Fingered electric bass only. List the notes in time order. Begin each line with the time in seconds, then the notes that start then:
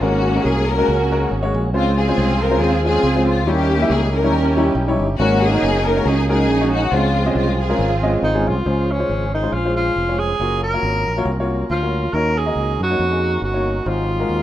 0.01 G#1
0.45 C2
0.88 C#2
1.31 G#1
1.54 A#1
1.74 C#2
2.18 C2
2.60 D#2
3.03 C#2
3.46 D#2
3.90 C#2
4.32 D#2
4.75 B1
5.00 G1
5.19 G#1
5.63 F#1
6.05 C#2
6.49 A#1
6.92 C#2
7.35 C2
7.79 G#1
8.22 G#1
8.47 C2
8.66 C#2
9.09 G#1
9.52 A#1
9.96 F1
10.39 F#1
10.83 G#1
11.06 A#1
11.25 C2
11.70 D2
12.13 D#2
12.56 C#2
12.80 F#2
12.99 F2
13.42 G1
13.86 G#1
14.29 D#2